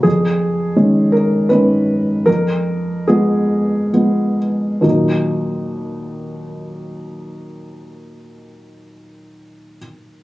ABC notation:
X:1
M:3/4
L:1/8
Q:1/4=67
K:Ebm
V:1 name="Felt piano"
A3 B c2 | B2 A3 z | [E,,B,,G,B,E]6- | [E,,B,,G,B,E]6 |]
V:2 name="Felt piano" clef=bass
F,,2 [E,A,D]2 [E,A,D]2 | F,,2 [F,A,C]2 [F,A,C]2 | z6 | z6 |]